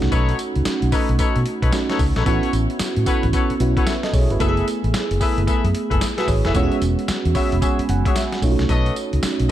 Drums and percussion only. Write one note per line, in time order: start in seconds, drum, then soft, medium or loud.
0.02 snare medium
0.02 closed hi-hat soft
0.12 kick loud
0.12 closed hi-hat medium
0.12 tambourine medium
0.29 closed hi-hat medium
0.39 closed hi-hat medium
0.39 tambourine medium
0.56 closed hi-hat soft
0.65 snare loud
0.65 closed hi-hat medium
0.65 tambourine loud
0.82 closed hi-hat medium
0.92 kick medium
0.92 open hi-hat medium
0.92 tambourine medium
1.09 closed hi-hat medium
1.19 kick loud
1.19 closed hi-hat medium
1.19 tambourine medium
1.36 closed hi-hat medium
1.46 closed hi-hat medium
1.62 kick loud
1.62 closed hi-hat medium
1.72 snare loud
1.72 closed hi-hat medium
1.72 tambourine medium
1.90 snare medium
1.90 closed hi-hat medium
1.99 kick loud
1.99 open hi-hat medium
1.99 tambourine medium
2.16 snare medium
2.16 closed hi-hat medium
2.26 kick loud
2.26 closed hi-hat medium
2.26 tambourine medium
2.43 closed hi-hat medium
2.53 closed hi-hat medium
2.53 tambourine medium
2.70 closed hi-hat soft
2.79 snare loud
2.79 closed hi-hat loud
2.79 tambourine loud
2.96 closed hi-hat medium
3.06 kick medium
3.06 closed hi-hat medium
3.06 tambourine medium
3.23 kick medium
3.23 closed hi-hat medium
3.33 kick loud
3.33 closed hi-hat medium
3.33 tambourine medium
3.50 closed hi-hat medium
3.60 closed hi-hat medium
3.77 kick loud
3.77 closed hi-hat medium
3.87 snare loud
3.87 closed hi-hat medium
3.87 tambourine loud
4.03 snare medium
4.03 closed hi-hat medium
4.13 kick loud
4.13 open hi-hat medium
4.13 tambourine medium
4.30 closed hi-hat medium
4.40 kick loud
4.40 closed hi-hat medium
4.40 tambourine medium
4.57 closed hi-hat medium
4.68 closed hi-hat medium
4.68 tambourine medium
4.84 closed hi-hat soft
4.94 snare loud
4.94 closed hi-hat medium
4.94 tambourine loud
5.11 closed hi-hat medium
5.21 kick medium
5.21 open hi-hat medium
5.21 tambourine medium
5.38 closed hi-hat medium
5.47 kick loud
5.47 closed hi-hat medium
5.47 tambourine medium
5.65 closed hi-hat medium
5.75 closed hi-hat medium
5.91 kick loud
5.91 closed hi-hat medium
6.01 snare loud
6.01 closed hi-hat medium
6.01 tambourine loud
6.18 snare medium
6.18 closed hi-hat medium
6.28 kick loud
6.28 open hi-hat medium
6.28 tambourine medium
6.45 snare medium
6.45 closed hi-hat medium
6.55 kick loud
6.55 closed hi-hat medium
6.55 tambourine medium
6.72 closed hi-hat soft
6.82 closed hi-hat medium
6.82 tambourine medium
6.99 closed hi-hat soft
7.08 snare loud
7.08 closed hi-hat medium
7.08 tambourine loud
7.25 closed hi-hat medium
7.35 kick medium
7.35 open hi-hat medium
7.35 tambourine medium
7.52 closed hi-hat medium
7.62 kick loud
7.62 closed hi-hat medium
7.62 tambourine medium
7.79 closed hi-hat medium
7.89 closed hi-hat medium
8.05 kick loud
8.05 closed hi-hat medium
8.16 snare loud
8.16 closed hi-hat medium
8.16 tambourine loud
8.32 snare medium
8.32 closed hi-hat medium
8.42 kick loud
8.42 open hi-hat medium
8.42 tambourine medium
8.59 snare medium
8.59 closed hi-hat medium
8.69 kick loud
8.69 closed hi-hat medium
8.69 tambourine medium
8.86 closed hi-hat medium
8.96 closed hi-hat medium
8.96 tambourine medium
9.13 closed hi-hat medium
9.23 snare loud
9.23 closed hi-hat medium
9.23 tambourine loud
9.40 closed hi-hat medium